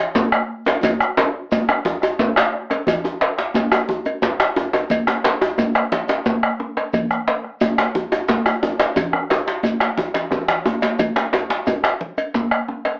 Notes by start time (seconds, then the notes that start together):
0.00 cowbell
0.15 bombo low, djembe slap, djembe tone, high conga, shekere
0.32 bombo rim, cowbell, djembe slap
0.66 cowbell, djembe slap, djembe tone, shekere
0.83 bombo low, cowbell, djembe slap, high conga, djembe tone, low conga, djembe bass, shekere
1.00 bombo rim, high conga, shekere
1.17 bombo rim, cowbell, djembe slap, djembe tone
1.51 bombo low, cowbell, djembe slap, high conga, djembe tone, shekere
1.68 bombo rim, cowbell, djembe slap, djembe tone
1.85 bombo rim, djembe slap, djembe tone, low conga, djembe bass
2.02 bombo rim, cowbell, djembe tone, shekere
2.19 bombo low, djembe slap, high conga, djembe tone, shekere
2.36 bombo rim, cowbell, djembe slap, shekere
2.53 bombo rim, djembe slap
2.70 bombo rim, cowbell, djembe slap, high conga, djembe tone, shekere
2.86 bombo low, cowbell, djembe slap, high conga, djembe tone, low conga, djembe bass, shekere
3.04 djembe slap, djembe tone, shekere
3.21 cowbell, djembe slap
3.38 bombo rim, djembe slap, high conga
3.54 bombo rim, bombo low, cowbell, djembe slap, high conga, djembe tone, djembe bass, shekere
3.72 bombo rim, cowbell, djembe slap, djembe tone, shekere
3.89 djembe slap, djembe tone, low conga
4.06 cowbell, djembe slap, djembe tone, shekere
4.22 bombo rim, bombo low, djembe slap, high conga, djembe bass, shekere
4.40 bombo rim, cowbell, djembe slap
4.56 djembe slap, djembe tone
4.73 bombo rim, cowbell, djembe slap, djembe tone
4.90 bombo low, cowbell, djembe slap, high conga, low conga, djembe bass, shekere
5.07 bombo rim, djembe slap, djembe tone, shekere
5.24 cowbell, djembe slap
5.41 bombo rim, high conga, djembe tone
5.58 bombo rim, bombo low, cowbell, high conga, djembe tone, djembe bass, shekere
5.75 bombo rim, cowbell, djembe slap, shekere
5.92 djembe slap, low conga
6.09 cowbell, djembe slap, djembe tone, shekere
6.26 bombo rim, bombo low, djembe slap, high conga, djembe bass, shekere
6.43 bombo rim, cowbell
6.60 djembe slap, djembe tone
6.77 bombo rim, cowbell, djembe slap
6.93 bombo low, cowbell, djembe slap, high conga, low conga, djembe bass, shekere
7.10 bombo rim, djembe slap, shekere
7.28 cowbell, djembe slap
7.44 bombo rim, high conga
7.61 bombo rim, bombo low, cowbell, high conga, djembe tone, djembe bass, shekere
7.78 bombo rim, cowbell, djembe slap, shekere
7.95 djembe slap, djembe tone, low conga
8.12 cowbell, djembe slap, djembe tone, shekere
8.29 bombo rim, bombo low, djembe slap, high conga, shekere
8.46 bombo rim, cowbell, djembe tone
8.63 djembe slap, djembe tone
8.79 bombo rim, cowbell, djembe slap
8.96 bombo low, cowbell, high conga, djembe tone, low conga, djembe bass, shekere
9.13 bombo rim, djembe slap, djembe tone
9.30 cowbell, djembe slap, djembe tone
9.47 bombo rim, djembe slap
9.63 cowbell, djembe slap, high conga, djembe tone, djembe bass, shekere
9.80 bombo rim, cowbell, djembe slap
9.97 bombo rim, djembe slap, high conga, djembe tone, low conga
10.14 bombo rim, cowbell, djembe slap, djembe tone, low conga
10.31 bombo rim, bombo low, djembe slap, djembe tone, low conga, djembe bass, shekere
10.48 bombo rim, cowbell, djembe slap, low conga
10.65 djembe tone, high conga, shekere
10.82 cowbell, djembe slap, high conga, shekere
10.99 bombo low, cowbell, djembe slap, djembe tone, high conga, djembe bass, low conga, shekere
11.16 bombo rim, djembe slap, djembe tone, shekere
11.33 cowbell, djembe slap, djembe tone
11.50 bombo rim, djembe slap, high conga
11.67 bombo rim, bombo low, cowbell, djembe tone, high conga, djembe bass, shekere
11.83 bombo rim, cowbell, djembe slap, shekere
12.01 djembe slap, low conga
12.18 cowbell, djembe slap, djembe tone, shekere
12.34 bombo rim, bombo low, djembe slap, high conga, djembe bass, shekere
12.51 bombo rim, cowbell
12.69 djembe slap, djembe tone
12.85 bombo rim, cowbell, djembe slap